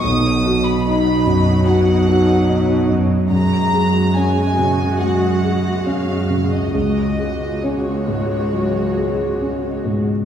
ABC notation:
X:1
M:4/4
L:1/16
Q:1/4=70
K:Dbmix
V:1 name="Violin section"
^d'3 =b b4 ^f6 z2 | b4 a4 g4 f3 e | e4 d8- d2 z2 |]
V:2 name="Viola section"
[^F,^D]16 | [A,G]16 | [A,G]12- [A,G]3 z |]
V:3 name="Grand piano"
=B,,,2 ^F2 ^D2 ^F,,2 ^F,2 F2 D2 F,,2 | G,,2 A2 D2 D,2 G,2 A2 D2 D,2 | D,,2 A2 D2 A,,2 G,2 A2 D2 A,,2 |]
V:4 name="Cello section" clef=bass
=B,,16 | G,,16 | D,,12- D,,3 z |]